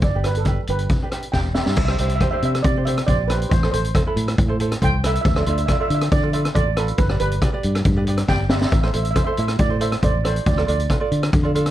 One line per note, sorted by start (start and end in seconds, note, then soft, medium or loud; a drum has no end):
0.02 0.56 G1 medium
0.02 0.26 D5 medium
0.02 kick loud
0.02 closed hi-hat medium
0.15 0.34 D4 medium
0.15 0.34 G4 medium
0.15 0.34 B4 medium
0.24 0.36 B4 medium
0.24 cross-stick medium
0.24 closed hi-hat medium
0.35 0.67 A4 medium
0.35 closed hi-hat medium
0.45 0.60 D4 medium
0.45 0.60 G4 medium
0.45 0.60 B4 medium
0.45 kick medium
0.45 cross-stick medium
0.45 closed hi-hat medium
0.67 0.86 G1 medium
0.67 0.88 D4 medium
0.67 0.88 G4 medium
0.67 0.89 B4 medium
0.67 1.52 B4 medium
0.67 closed hi-hat medium
0.79 closed hi-hat medium
0.89 kick loud
0.89 closed hi-hat medium
1.02 1.08 D4 medium
1.02 1.08 G4 medium
1.02 1.09 B4 medium
1.12 1.25 D4 medium
1.12 1.26 G4 medium
1.12 1.26 B4 medium
1.12 cross-stick medium
1.12 closed hi-hat medium
1.22 closed hi-hat medium
1.32 1.61 E1 medium
1.32 1.47 D4 medium
1.32 1.48 G4 medium
1.32 1.48 B4 medium
1.32 1.55 G5 medium
1.32 kick medium
1.32 snare soft
1.55 1.76 D4 medium
1.55 1.76 G4 medium
1.55 1.76 B4 medium
1.55 1.60 E5 medium
1.55 snare medium
1.62 1.68 E5 medium
1.66 1.75 G2 medium
1.66 1.75 E5 medium
1.66 snare medium
1.76 1.95 C2 loud
1.76 1.84 E5 medium
1.76 kick loud
1.76 crash loud
1.85 1.95 D4 medium
1.85 1.91 E5 medium
1.85 cross-stick medium
1.89 1.95 G4 medium
1.89 1.96 C5 medium
1.89 1.99 E5 medium
1.98 2.17 C2 medium
1.98 2.12 D4 medium
1.98 2.13 G4 medium
1.98 2.13 C5 medium
1.98 2.07 E5 medium
1.98 closed hi-hat medium
2.08 2.14 E5 medium
2.08 closed hi-hat medium
2.16 2.21 E5 medium
2.21 2.28 D4 medium
2.21 2.28 G4 medium
2.21 2.28 C5 medium
2.21 2.30 E5 medium
2.21 kick medium
2.21 cross-stick medium
2.21 closed hi-hat medium
2.31 2.58 D4 medium
2.31 2.58 G4 medium
2.31 2.59 C5 medium
2.31 2.36 E5 medium
2.37 2.44 E5 medium
2.42 2.61 C3 medium
2.42 2.53 E5 medium
2.42 closed hi-hat medium
2.55 cross-stick medium
2.55 closed hi-hat medium
2.63 3.00 C3 loud
2.63 2.73 D5 loud
2.63 kick loud
2.63 closed hi-hat medium
2.77 2.83 D4 medium
2.77 2.83 G4 medium
2.77 2.83 C5 medium
2.85 3.00 D4 medium
2.85 3.00 G4 medium
2.85 3.00 C5 medium
2.85 3.08 E5 medium
2.85 closed hi-hat medium
2.97 cross-stick medium
2.97 closed hi-hat medium
3.07 3.44 A#1 medium
3.07 3.21 D4 medium
3.07 3.21 G4 medium
3.07 3.22 C5 medium
3.07 3.30 D5 loud
3.07 kick medium
3.07 closed hi-hat medium
3.28 3.49 D4 medium
3.28 3.50 G4 medium
3.28 3.38 B4 medium
3.28 3.50 C5 medium
3.28 cross-stick medium
3.28 closed hi-hat medium
3.42 closed hi-hat medium
3.50 3.69 A1 loud
3.50 3.70 C5 medium
3.50 kick loud
3.50 closed hi-hat medium
3.63 3.69 E4 medium
3.63 3.69 A4 medium
3.63 3.70 C5 medium
3.63 cross-stick medium
3.71 3.91 A1 medium
3.71 3.86 E4 medium
3.71 3.87 A4 medium
3.71 4.13 C5 medium
3.71 3.87 C5 medium
3.71 closed hi-hat loud
3.84 closed hi-hat medium
3.94 4.02 E4 medium
3.94 4.02 A4 medium
3.94 4.02 C5 medium
3.94 kick medium
3.94 cross-stick medium
3.94 closed hi-hat medium
4.06 4.32 E4 medium
4.06 4.33 A4 medium
4.06 4.33 B4 medium
4.16 4.34 A2 medium
4.16 closed hi-hat medium
4.28 cross-stick medium
4.28 closed hi-hat medium
4.38 4.74 A2 medium
4.38 kick loud
4.38 closed hi-hat medium
4.48 4.55 E4 medium
4.48 4.55 A4 medium
4.48 4.56 C5 medium
4.60 4.73 E4 medium
4.60 4.74 A4 medium
4.60 4.74 C5 loud
4.60 closed hi-hat medium
4.72 cross-stick medium
4.72 closed hi-hat medium
4.81 5.18 C2 loud
4.81 4.95 E4 medium
4.81 4.95 A4 medium
4.81 4.96 C5 medium
4.81 5.03 G5 loud
4.81 kick medium
4.81 closed hi-hat medium
5.04 5.24 E4 medium
5.04 5.24 A4 medium
5.04 5.24 B4 medium
5.04 5.13 E5 medium
5.04 cross-stick medium
5.04 closed hi-hat medium
5.14 5.20 E5 medium
5.14 closed hi-hat medium
5.21 5.43 D2 loud
5.21 5.27 E5 medium
5.21 kick loud
5.21 closed hi-hat medium
5.28 5.35 E5 medium
5.36 5.43 F4 medium
5.36 5.43 A4 medium
5.36 5.43 D5 medium
5.36 5.41 E5 medium
5.36 cross-stick loud
5.42 5.60 F4 medium
5.42 5.49 E5 medium
5.42 closed hi-hat medium
5.47 5.65 D2 loud
5.47 5.61 A4 medium
5.47 5.61 D5 medium
5.47 5.57 E5 medium
5.58 5.65 E5 medium
5.58 closed hi-hat medium
5.66 5.76 F4 medium
5.66 5.76 A4 medium
5.66 5.76 D5 medium
5.66 5.72 E5 medium
5.66 kick medium
5.66 cross-stick medium
5.66 closed hi-hat medium
5.73 5.80 E5 medium
5.80 6.06 F4 medium
5.80 6.06 A4 medium
5.80 6.06 D5 medium
5.80 5.87 E5 medium
5.88 6.08 D3 loud
5.88 5.93 E5 medium
5.88 closed hi-hat medium
5.95 6.02 E5 medium
6.01 cross-stick medium
6.01 closed hi-hat medium
6.12 6.48 D3 loud
6.12 6.35 D5 loud
6.12 kick loud
6.12 closed hi-hat medium
6.23 6.29 F4 medium
6.23 6.30 A4 medium
6.23 6.30 D5 medium
6.33 6.47 F4 medium
6.33 6.47 A4 medium
6.33 6.48 D5 medium
6.33 6.56 E5 medium
6.33 closed hi-hat medium
6.45 cross-stick medium
6.45 closed hi-hat medium
6.55 6.91 A1 loud
6.55 6.69 F4 medium
6.55 6.69 A4 medium
6.55 6.75 D5 loud
6.55 6.69 D5 medium
6.55 kick medium
6.55 closed hi-hat medium
6.77 6.97 F4 medium
6.77 7.00 A4 medium
6.77 6.97 A4 medium
6.77 6.97 B4 medium
6.77 cross-stick loud
6.77 closed hi-hat medium
6.88 closed hi-hat medium
6.98 7.16 G1 loud
6.98 7.08 B4 medium
6.98 kick loud
6.98 closed hi-hat medium
7.09 7.16 G4 medium
7.09 7.16 B4 medium
7.09 7.17 D5 medium
7.09 cross-stick medium
7.20 7.38 G1 loud
7.20 7.34 G4 medium
7.20 7.61 B4 medium
7.20 7.34 B4 medium
7.20 7.34 D5 medium
7.20 closed hi-hat medium
7.32 closed hi-hat medium
7.42 7.49 G4 medium
7.42 7.50 B4 medium
7.42 7.50 D5 medium
7.42 kick medium
7.42 cross-stick medium
7.42 closed hi-hat medium
7.53 7.79 G4 medium
7.53 7.79 B4 medium
7.53 7.80 D5 medium
7.63 7.82 G2 medium
7.63 closed hi-hat medium
7.75 cross-stick medium
7.75 closed hi-hat medium
7.85 8.21 G2 loud
7.85 kick loud
7.85 closed hi-hat medium
7.96 8.03 G4 medium
7.96 8.03 B4 medium
7.96 8.03 D5 medium
8.07 8.21 G4 medium
8.07 8.21 B4 medium
8.07 8.21 D5 medium
8.07 closed hi-hat medium
8.17 cross-stick medium
8.17 closed hi-hat medium
8.28 8.65 G1 loud
8.28 8.42 G4 medium
8.28 8.43 B4 medium
8.28 8.43 D5 medium
8.28 8.51 G5 loud
8.28 kick medium
8.28 snare medium
8.49 8.70 G4 medium
8.49 8.70 B4 medium
8.49 8.71 D5 medium
8.49 8.57 E5 loud
8.49 snare loud
8.58 8.64 E5 medium
8.58 snare medium
8.65 8.72 E5 medium
8.72 8.90 A1 loud
8.72 8.80 E5 medium
8.72 kick loud
8.72 closed hi-hat medium
8.81 8.90 E4 medium
8.81 8.90 A4 medium
8.81 8.90 C5 medium
8.81 8.86 E5 medium
8.81 cross-stick medium
8.88 8.94 E5 medium
8.93 9.12 A1 medium
8.93 9.07 E4 medium
8.93 9.07 A4 medium
8.93 9.07 C5 medium
8.93 9.02 E5 medium
8.93 closed hi-hat medium
9.03 9.10 E5 medium
9.03 closed hi-hat medium
9.11 9.22 E4 medium
9.11 9.22 A4 medium
9.11 9.16 E5 medium
9.16 9.23 C5 medium
9.16 9.23 E5 medium
9.16 kick medium
9.16 cross-stick medium
9.16 closed hi-hat medium
9.24 9.52 E4 medium
9.24 9.53 A4 medium
9.24 9.53 C5 loud
9.24 9.31 E5 medium
9.32 9.38 E5 medium
9.37 9.56 A2 medium
9.37 9.47 E5 medium
9.37 closed hi-hat medium
9.48 cross-stick medium
9.48 closed hi-hat medium
9.59 9.95 A2 loud
9.59 9.79 D5 loud
9.59 kick loud
9.59 closed hi-hat medium
9.69 9.76 E4 medium
9.69 9.76 A4 medium
9.69 9.77 C5 medium
9.80 9.94 E4 medium
9.80 9.94 A4 medium
9.80 9.94 C5 medium
9.80 10.02 E5 medium
9.80 closed hi-hat medium
9.92 cross-stick medium
9.92 closed hi-hat medium
10.02 10.39 A1 loud
10.02 10.16 E4 medium
10.02 10.16 A4 medium
10.02 10.16 C5 medium
10.02 10.26 D5 medium
10.02 kick medium
10.02 closed hi-hat medium
10.24 10.44 E4 medium
10.24 10.44 A4 medium
10.24 10.47 C5 medium
10.24 10.44 D5 medium
10.24 cross-stick medium
10.24 closed hi-hat medium
10.36 closed hi-hat medium
10.46 10.64 D2 loud
10.46 10.67 D5 medium
10.46 kick loud
10.46 closed hi-hat medium
10.57 10.63 F4 medium
10.57 10.64 A4 medium
10.57 10.64 D5 medium
10.57 cross-stick medium
10.66 10.86 D2 medium
10.66 10.81 F4 medium
10.66 10.81 A4 medium
10.66 10.81 D5 medium
10.66 11.09 D5 medium
10.66 closed hi-hat medium
10.80 closed hi-hat medium
10.89 10.96 F4 medium
10.89 10.96 A4 medium
10.89 10.96 B4 medium
10.89 kick medium
10.89 cross-stick medium
10.89 closed hi-hat medium
11.00 11.26 F4 medium
11.00 11.27 A4 medium
11.00 11.27 D5 medium
11.12 11.29 D3 medium
11.12 closed hi-hat medium
11.23 cross-stick medium
11.23 closed hi-hat medium
11.33 11.69 D3 loud
11.33 kick loud
11.33 closed hi-hat medium
11.43 11.50 F4 medium
11.43 11.51 A4 medium
11.43 11.51 D5 loud
11.55 11.68 F4 medium
11.55 11.68 A4 medium
11.55 11.69 D5 medium
11.55 closed hi-hat medium
11.66 cross-stick medium
11.66 closed hi-hat medium